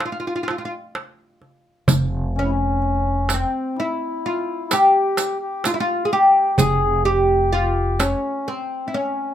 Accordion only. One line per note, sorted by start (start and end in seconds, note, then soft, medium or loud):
2.35 2.43 C#4 medium
2.44 2.50 E4 medium
2.50 3.33 C#4 medium
3.30 3.79 C4 medium
3.77 4.74 E4 medium
4.71 5.37 G4 medium
5.42 5.66 G4 medium
5.65 5.76 F4 medium
5.78 6.13 F4 medium
6.12 6.56 G4 medium
6.59 7.03 G#4 loud
7.07 8.03 G4 medium
8.00 8.49 C#4 medium
8.47 8.96 C4 medium
8.94 9.34 C#4 medium